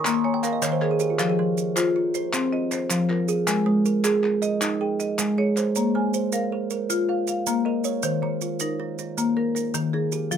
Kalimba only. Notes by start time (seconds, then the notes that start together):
Already playing: C#6
0.05 A#3 C6
0.14 A#5
0.25 G#5
0.34 G5
0.43 F5
0.53 D#5
0.62 D#3 C#5
0.72 C5
0.82 A#4
0.91 G#4
1.01 G4
1.10 F4
1.20 G4
1.29 G#4
1.39 F3
1.77 F4
1.96 F4
2.15 C5
2.35 C4
2.53 F4
2.91 F3
3.10 F4
3.28 G#4
3.48 A#4
3.66 G#3
3.85 A#4
4.04 G#4
4.23 G#4
4.42 D#5
4.61 D#4
4.81 G#4
5.19 G#3
5.38 G#4
5.57 C5
5.76 C#5
5.95 A#3
6.14 C5
6.52 A#4
6.71 A#4
6.90 F4
7.09 F5
7.47 A#3
7.66 A#4
7.85 C#5
8.04 C5
8.23 D#3
8.42 F4
8.80 D#4
8.99 D#4
9.17 A#3
9.37 A#4
9.75 D#3
9.94 D#4
10.13 G4
10.32 F4